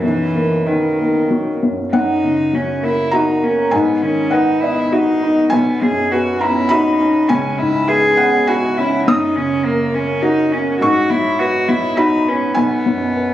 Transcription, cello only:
0.01 E3
0.66 D#3
1.93 D#4
2.55 C#4
2.84 E4
3.14 D#4
3.44 C#4
3.73 B3
4.02 C#4
4.33 D#4
4.60 E4
4.92 D#4
5.52 B3
5.82 G#4
6.12 F#4
6.42 E4
6.71 D#4
7.29 C#4
7.58 E4
7.88 G#4
8.48 F#4
8.77 E4
9.07 D#4
9.36 C#4
9.65 A#3
9.94 C#4
10.22 D#4
10.52 C#4
10.80 F#4
11.10 E4
11.39 F#4
11.68 E4
11.97 D#4
12.29 C#4
12.57 B3

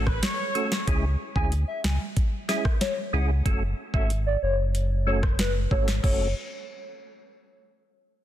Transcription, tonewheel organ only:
0.55 A3 C#4 F#4 A4
0.87 G#3 C#4 E4 G#4
1.36 G#3 C#4 E4 G#4
2.49 G#3 C#4 E4 G#4
3.13 G#3 C#4 E4 G#4
3.46 A3 C#4 F#4 A4
3.94 A3 C#4 F#4 A4
5.07 A3 C#4 F#4 A4
5.71 A3 C#4 F#4 A4
6.03 A3 C#4 F#4 A4

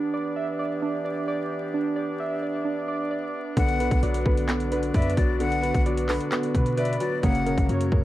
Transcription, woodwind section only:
Already playing: E3 B3 D4 G4
3.57 F#4
7.23 F#3 A#4 C#5

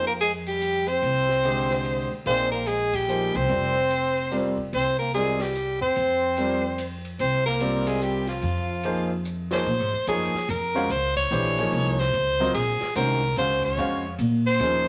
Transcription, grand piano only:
1.45 D3 G#3 G4 C5 D#5
2.26 A#3 D#4 G#4 D5 F5
3.09 F3 A#3 D#4 G#4 C5
3.49 G3 C4 F4 A#4 D5
4.31 G3 C4 F4 A#4 D5
5.14 G3 C4 F4 A#4 D5
6.38 G3 C4 F4 A#4 D5
7.61 G3 C4 F4 A#4 D5
8.84 F3 A#3 D#4 G#4 C5
9.52 F3 A#3 D#4 G#4 C#5
10.08 F3 A#3 D#4 G#4 C#5
10.75 G#3 C#4 F#4 C5 F5
11.31 E3 A3 D4 G4 C5
11.58 F3 A#3 D#4 G#4 C#5
12.40 F#3 C4 F4 A#4 D#5
12.96 D#3 G#3 C#4 F#4 C5
13.38 G#3 C#4 F#4 C5 F5
13.78 G#3 C#4 F#4 C5 F5
14.60 F3 A#3 C#4 D#4 G#4

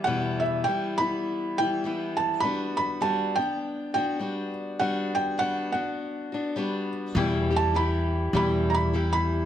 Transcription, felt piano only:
0.04 F#5
0.40 E5
0.64 G5
0.98 B5
1.58 G5
2.17 A5
2.40 B5
2.77 B5
3.02 A5
3.35 G5
3.94 G5
4.79 F#5
5.15 G5
5.39 F#5
5.72 F#5
7.56 A5
7.76 B5
8.36 B5
8.70 A#5
8.74 B5
9.13 B5

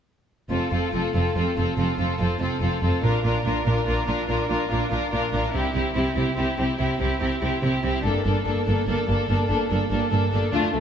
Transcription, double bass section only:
0.51 F1
0.72 F1
0.94 F1
1.15 F1
1.36 F1
1.57 F1
1.78 F1
1.99 F1
2.20 F1
2.41 F1
2.61 F1
2.83 F1
3.03 A#1
3.25 A#1
3.45 A#1
3.67 A#1
3.88 A#1
4.09 A#1
4.29 A#1
4.50 A#1
4.71 A#1
4.92 A#1
5.13 A#1
5.33 A#1
5.55 C2
5.76 C2
5.96 C2
6.16 C2
6.38 C2
6.59 C2
6.80 C2
7.00 C2
7.22 C2
7.43 C2
7.64 C2
7.84 C2
8.05 G1
8.26 G1
8.47 G1
8.68 G1
8.89 G1
9.10 G1
9.29 G1
9.50 G1
9.71 G1
9.92 G1
10.13 G1
10.34 G1
10.55 D2
10.76 D2

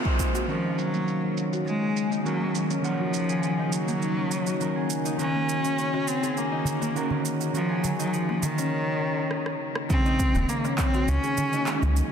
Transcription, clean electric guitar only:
Already playing: C4 F4 A#4
0.47 D#3 C#4 F#4 A#4
2.25 D#3 C#4 F#4 A#4
2.82 D#3 C#4 A#4 F#5
4.60 D#3 C#4 F#4 A#4
5.17 D#3 C#4 F#4
5.21 A#4
6.95 D#3 C#4 F#4 A#4
7.53 D#3 C#4 F#4 A#4
9.89 C#3 D#3 G#3
11.66 D#3 G#3 C#4

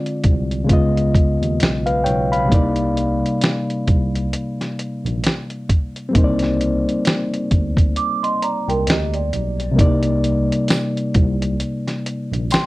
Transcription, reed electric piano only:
Already playing: D3 G#3 C4 F4 D5
0.64 C#3 G#3
0.69 B3 F4
0.73 D#5
1.86 B4 F5
2.04 C#5 G5
2.32 F5 B5
2.45 C3 G3
2.50 A#3 D#4
2.54 D5
6.09 G3 C4
6.13 A#3 D#4
6.17 C5
6.24 D5
9.71 C3 G3
9.76 A#3 D#4
9.81 D5
12.52 G5 C6

